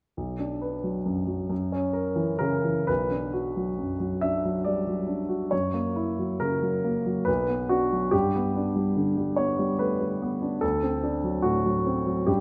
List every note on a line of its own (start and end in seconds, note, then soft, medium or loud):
0.17 1.46 B1 soft
0.39 0.75 D4 soft
0.62 0.97 B4 soft
0.84 1.19 F#3 soft
1.06 1.41 F#2 soft
1.27 1.50 F#3 soft
1.49 2.85 F#2 soft
1.72 2.08 C#4 soft
1.93 2.31 A#4 soft
2.16 2.56 E3 soft
2.39 2.79 C#3 soft
2.39 2.87 A#4 medium
2.64 2.88 E3 soft
2.87 5.48 B1 soft
2.87 4.20 B4 medium
3.11 3.46 D4 soft
3.33 3.68 F#4 soft
3.56 3.91 F#3 soft
3.78 4.13 F#2 soft
4.00 4.34 F#3 soft
4.21 4.56 D4 soft
4.21 4.65 E5 medium
4.45 4.79 F#3 soft
4.64 4.87 G3 soft
4.64 5.52 D5 soft
4.87 5.22 F#3 soft
5.08 5.43 D4 soft
5.29 5.51 F#4 soft
5.51 7.24 F#2 soft
5.51 6.40 C#5 medium
5.74 6.09 A#3 soft
5.96 6.31 E4 soft
6.19 6.54 F#3 soft
6.40 6.76 C#3 soft
6.40 7.27 A#4 medium
6.62 6.97 F#3 soft
6.84 7.19 A#3 soft
7.06 7.28 F#3 soft
7.25 8.10 B1 soft
7.25 7.69 B4 medium
7.48 7.83 B3 soft
7.69 8.04 D4 soft
7.69 8.12 F#4 medium
7.92 8.13 F#3 soft
8.11 10.59 G2 soft
8.11 9.37 G4 medium
8.36 8.68 B3 soft
8.56 8.88 D4 soft
8.76 9.09 G3 soft
8.96 9.30 D3 soft
9.17 9.50 G3 soft
9.36 9.71 B3 soft
9.36 9.79 C#5 medium
9.59 9.92 G3 soft
9.79 10.01 A3 soft
9.79 10.62 B4 soft
10.00 10.34 G3 soft
10.22 10.55 B3 soft
10.42 10.63 D4 soft
10.61 12.24 D2 soft
10.61 11.44 A4 medium
10.83 11.16 C4 soft
11.03 11.37 D4 soft
11.24 11.57 F#3 soft
11.42 11.78 A2 soft
11.42 12.27 F#4 medium
11.65 11.99 F#3 soft
11.86 12.20 C4 soft
12.06 12.28 F#3 soft
12.27 12.40 G2 soft
12.27 12.40 G4 soft